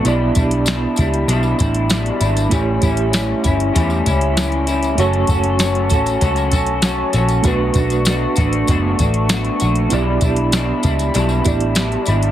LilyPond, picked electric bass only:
\new Staff \with { instrumentName = "Picked electric bass" } { \clef bass \time 4/4 \key e \dorian \tempo 4 = 97 b,,8 b,,4 cis,8 b,,8 a,,4 gis,,8 | a,,8 a,,4 g,,8 e,8 cis,4. | fis,,8 fis,,4 a,,8 cis,8 b,,4 ais,,8 | b,,8 b,,4 a,,8 fis,,8 a,,4 ais,,8 |
b,,8 b,,4 cis,8 b,,8 a,,4 gis,,8 | }